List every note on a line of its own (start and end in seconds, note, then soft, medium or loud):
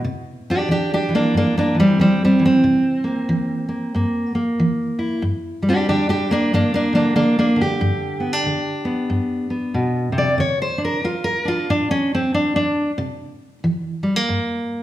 0.04 0.64 C3 medium
0.50 0.70 D4 medium
0.50 0.71 G4 medium
0.68 1.08 E3 medium
0.68 0.92 D4 medium
0.68 0.92 G4 medium
0.94 1.14 D4 medium
0.94 1.14 G4 medium
1.09 1.73 E3 soft
1.15 1.35 A#3 medium
1.15 1.36 D4 medium
1.34 1.94 G2 medium
1.34 1.56 A#3 medium
1.34 1.57 D4 medium
1.58 1.78 A#3 medium
1.58 1.79 D4 medium
1.74 1.98 E3 soft
1.80 2.00 G3 medium
1.80 2.00 C4 medium
1.99 2.38 E3 medium
1.99 2.22 G3 medium
1.99 2.22 C4 medium
2.24 2.44 G3 medium
2.24 2.44 C4 medium
2.39 2.61 E3 soft
2.46 4.38 C4 medium
2.64 3.23 C3 medium
3.04 3.67 A#3 soft
3.29 3.88 E3 medium
3.69 3.94 A#3 soft
3.94 4.53 G2 medium
3.94 4.34 A#3 soft
4.35 5.21 A#3 soft
4.60 5.18 E3 medium
4.99 5.23 E4 soft
5.22 5.82 G2 medium
5.62 6.31 G3 soft
5.69 5.87 D4 medium
5.69 5.88 G4 medium
5.89 6.47 D3 medium
5.89 6.08 D4 medium
5.89 6.09 G4 loud
6.09 6.30 D4 medium
6.09 6.31 G4 medium
6.31 6.52 A#3 medium
6.31 6.53 D4 loud
6.53 7.12 G2 medium
6.53 6.73 A#3 medium
6.53 6.74 D4 loud
6.74 6.94 A#3 medium
6.74 6.94 D4 medium
6.93 7.15 D3 soft
6.93 7.15 A#3 medium
6.93 7.15 D4 medium
7.16 7.55 D3 medium
7.16 7.38 A#3 medium
7.16 7.38 D4 loud
7.39 7.60 A#3 medium
7.39 7.60 D4 medium
7.56 8.45 D3 medium
7.61 9.55 G4 loud
7.81 8.41 G2 medium
8.20 8.33 B3 soft
8.33 10.40 D4 soft
8.46 9.06 D3 medium
8.85 9.49 B3 soft
9.10 9.70 G2 medium
9.50 10.37 B3 soft
9.74 10.12 B2 medium
10.12 10.39 C3 medium
10.18 10.40 D5 medium
10.38 10.99 D3 medium
10.38 10.61 C#5 medium
10.62 10.83 C5 medium
10.78 11.03 D4 soft
10.85 11.05 A#4 medium
11.04 11.44 D4 medium
11.04 11.26 F4 medium
11.24 11.47 A#4 loud
11.45 11.69 D4 soft
11.45 11.70 F4 medium
11.70 12.29 A2 medium
11.70 11.90 D4 loud
11.91 12.13 C#4 loud
12.15 12.34 C4 medium
12.34 12.55 D4 medium
12.56 12.91 D4 medium
12.98 13.58 C3 medium
13.64 14.24 E3 medium
14.03 14.16 G3 soft
14.16 14.83 A#3 soft
14.29 14.83 G2 medium